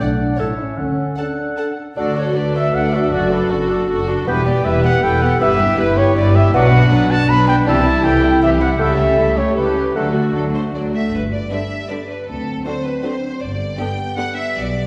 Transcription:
0.00 B1 B2 D4 D5 F#5
0.37 A1 A2 E4 A4 C#5 E5 A5
0.59 C#4
0.77 D2 D3 C#4 A4 F#5
1.17 D4 A4 F#5 A5
1.57 A4 F#5 A5
1.96 D2 D3 D4 F#4 A4 D5 F#5
2.17 F#4 A4 C#5 D5
2.35 D2 D3 D4 A4 B4 D5
2.55 F#4 A4 D5 E5
2.74 D2 D3 D4 A4 D5 F#5
2.92 F#4 A4 D5 E5
3.12 F#1 F#2 D4 F#4 A4 D5 F#5
3.30 D4 F#4 A4 B4
3.50 F#1 F#2 F#4 A4
3.70 D4 F#4 A4
3.89 F#1 F#2 F#4 A4
4.09 D4 F#4 A4
4.27 E1 E2 G3 B3 E4 G4 B4 G5
4.46 B3 G4 D5
4.65 E1 E2 G3 E4 B4 E5
4.84 B3 G4 F#5
5.03 E1 E2 G3 E4 A4 B4 G5
5.22 B3 G4 F#5
5.40 G1 G2 G3 B3 E4 G4 B4 E5
5.59 B3 G4
5.78 G1 G2 G3 E4 B4
5.97 B3 G4 C#5
6.15 G1 G2 G3 E4 B4 D5
6.33 B3 G4 E5
6.52 B1 B2 F#3 B3 D4 F#4 B4 D5 F#5
6.72 B3 F#4
6.90 B1 B2 F#3 D4 B4
7.09 B3 F#4 A5
7.27 B1 B2 F#3 D4 B4 B5
7.47 B3 F#4 G5
7.64 C2 C3 E3 G3 C4 E4 G4 E5 A5
7.85 G3 E4
8.04 C2 C3 E3 C4 G4 A4 G5
8.23 G3 E4
8.40 C2 C3 E3 C4 G4 E5
8.60 G3 E4 F#5
8.78 C#2 C#3 G3 A3 E4 G4 A4 E5 G5
8.96 A3 C#4 G4
9.18 C#2 C#3 G3 E4 A4
9.36 A3 C#4 G4 C#5
9.55 C#2 C#3 G3 E4 G4 A4 B4
9.75 A3 C#4 G4
9.94 D2 D3 F#3 A3 D4 F#4 A4 F#5
10.14 A3 F#4
10.35 D2 D3 F#3 D4 A4
10.54 A3 F#4 C5
10.75 D2 D3 F#3 D4 D5
10.94 A3 F#4 E5
11.14 G1 G2 G3 D4 B4
11.32 D5
11.50 D3 G3 B3 D4 E5
11.88 D3 G3 B3 D4 D5
12.08 B4
12.27 D2 F#3 C4 A4
12.65 D3 C4 D4 F#4 C5
12.83 B4
13.02 D3 C4 D4 F#4 C5
13.41 G1 G2 G3 B3 D5
13.79 D3 B3 D4 G4 G5
14.17 D3 B3 D4 G4 F#5
14.36 E5
14.55 B1 B2 D5

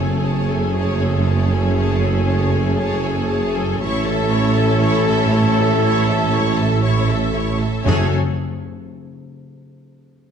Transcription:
Already playing: F#1 F#2 A3 C#4 G#4 C#5
0.00 G#4 A4 G#5
0.26 G#4 C#5 A5
0.50 G#4 A4 G#5
0.76 G#4 C#5 A5
1.01 G#4 A4 G#5
1.26 G#4 C#5 A5
1.52 G#4 A4 G#5
1.77 G#4 C#5 A5
2.02 G#4 A4 G#5
2.28 G#4 C#5 A5
2.54 G#4 A4 G#5
2.78 G#4 C#5 A5
3.04 G#4 A4 G#5
3.29 G#4 C#5 A5
3.54 G#4 A4 G#5
3.80 A1 A2 A3 C#4 E4 A4 C#5 C#6
4.06 A4 E5 A5
4.30 E4 C#5 C#6
4.56 A4 E5 A5
4.81 E4 C#5 C#6
5.07 A4 E5 A5
5.33 E4 C#5 C#6
5.58 A4 E5 A5
5.82 E4 C#5 C#6
6.08 A4 E5 A5
6.33 E4 C#5 C#6
6.58 A4 E5 A5
6.84 E4 C#5 C#6
7.09 A4 E5 A5
7.34 E4 C#5 C#6
7.60 A4 E5 A5
7.86 F#1 F#2 A3 C#4 F#4 G#4 A4 C#5 G#5

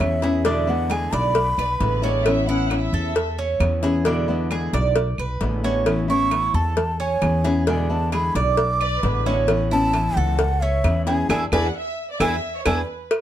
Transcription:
Already playing: C#4 E5
0.00 E2 E3 B3 C#4 E4, cowbell, claves
0.22 B3 C#4 E4 G#4, cowbell
0.44 B2 D3 G#3 B3 D4 E4 E5, cowbell
0.67 D3 G#3 B3 E4 F#5
0.90 D3 G#3 B3 E4 G#4 G#5, cowbell, claves
1.13 B1 D5 B5, cowbell
1.35 muted nylon-string guitar stroke, cowbell
1.58 B1 B4 D5, claves
1.80 A1 D3 G#3 B3 E4 B4, cowbell
2.02 D3 G#3 B3 C#4 E4 D5
2.25 E3 B3 C#4 E4 E5, cowbell, claves
2.47 B3 C#4 E4 F#5
2.70 E3 B3 C#4 E4 E5, cowbell, claves
2.93 E2 A4
3.15 muted nylon-string guitar stroke, cowbell
3.39 C#4
3.60 E2 E3 B3 C#4 E4, cowbell, claves
3.83 B3 C#4 E4 G#4, cowbell
4.05 B2 D3 G#3 B3 D4 E4, cowbell
4.28 D3 G#3 B3 E4
4.51 D3 G#3 B3 E4 G#4, cowbell, claves
4.73 B1 D5, cowbell
4.96 muted nylon-string guitar stroke, cowbell
5.18 B1 B4, claves
5.41 A1 D3 G#3 B3 E4, cowbell
5.64 D3 G#3 B3 C#4 E4
5.86 E3 B3 C#4 E4, cowbell, claves
6.08 B3 C#4 E4 C#6
6.31 E3 B3 C#4 E4, cowbell, claves
6.54 E2 A4 A5
6.77 muted nylon-string guitar stroke, cowbell
7.00 C#4 G#5
7.22 E2 E3 B3 C#4 E4, cowbell, claves
7.44 B3 C#4 E4 G#4, cowbell
7.67 B2 D3 G#3 B3 D4 E4 G#5, cowbell
7.90 D3 G#3 B3 E4 A5
8.12 D3 G#3 B3 E4 G#4 B5, cowbell, claves
8.35 B1 D5 D6, cowbell
8.57 muted nylon-string guitar stroke, cowbell
8.81 B4 D5, claves
9.03 A1 D3 G#3 B3 E4 B4, cowbell
9.26 D3 G#3 B3 C#4 E4
9.48 E3 B3 C#4 E4, cowbell, claves
9.71 B3 C#4 E4 A5
9.93 E3 B3 C#4 E4, cowbell, claves
10.16 C#2 A4 F#5
10.39 muted nylon-string guitar stroke, cowbell
10.61 C#4 E5
10.84 E2 E3 B3 C#4 E4, cowbell, claves
11.06 B3 C#4 E4 G#4 G#5, cowbell
11.29 E2 B3 D4 E4 G#4 B4 G#5, cowbell, claves
11.52 E2 B3 D4 E4 G#4 B4 D5 G#5, cowbell, claves
11.64 F#5
11.75 E5
12.11 D5
12.20 E2 B3 D4 E4 G#4 B4 E5 G#5, cowbell, claves
12.55 C#5
12.66 E2 B3 D4 E4 G#4 B4 G#5, cowbell, claves
13.11 cowbell, claves

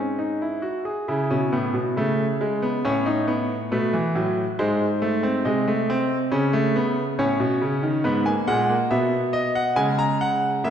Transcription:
Already playing: G#2 C#4 G#4
0.19 D#4
0.42 E4
0.62 F#4
0.85 G#4
1.08 C#3 E4 G#4
1.30 B2 C#4
1.52 A2 B3
1.74 B2
1.97 C#3 A3
2.41 G#3
2.62 B3
2.85 A2 C#4 C#5
3.06 D#4
3.28 B3
3.72 B2 A3 B4
3.93 E3
4.15 A2 F#3
4.59 G#2 G#3 C5
5.02 A3
5.23 C4
5.45 C3 G#3 D#5
5.68 A3
5.90 C4
6.32 C#3 C#4
6.53 A3
6.76 B3
7.19 A2 C#4 C#5
7.40 B2
7.61 C#3
7.83 D#3
8.04 G#2 B3 B4
8.26 A#3 G#5
8.47 A#2 G#3 F#5
8.69 A#3
8.91 B2 B3 E5
9.33 D#5
9.55 F#5
9.76 C#3 G#3 G#5
9.99 A#5
10.21 F#5
10.64 C#3 A#3 E5

